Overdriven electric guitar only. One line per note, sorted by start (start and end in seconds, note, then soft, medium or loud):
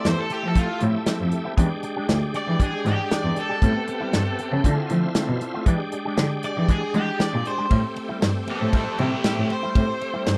0.08 0.19 C5 medium
0.20 0.31 A4 medium
0.33 0.47 G4 medium
0.47 0.57 A4 medium
0.58 0.82 F4 medium
2.37 2.60 D5 medium
2.63 2.86 G#4 medium
2.88 3.12 G4 medium
3.13 3.37 D5 medium
3.40 4.88 A4 medium
6.45 6.69 D5 loud
6.70 6.94 G#4 medium
6.96 7.20 G4 medium
7.22 7.46 D5 medium
7.48 7.71 C5 medium
8.51 8.75 C4 medium
8.51 8.74 A4 loud
8.77 8.99 C4 medium
8.77 9.00 A4 medium
9.00 9.23 E4 medium
9.00 9.25 G4 medium
9.25 9.49 E4 medium
9.25 9.50 G4 medium
9.53 10.38 C5 medium